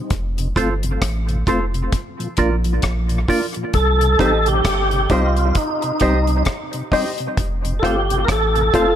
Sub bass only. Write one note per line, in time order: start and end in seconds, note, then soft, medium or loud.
0.11 0.53 F1 loud
0.57 0.99 G1 medium
1.02 1.44 A1 loud
1.48 1.89 F1 loud
2.38 2.80 A#1 loud
2.84 3.26 A#1 medium
3.74 4.16 C2 loud
4.20 4.62 A1 medium
4.65 5.07 G1 loud
5.10 5.52 C2 loud
6.01 6.43 C2 medium
7.38 7.80 F1 loud
7.83 8.25 G1 medium
8.29 8.71 A1 loud
8.74 8.96 F1 loud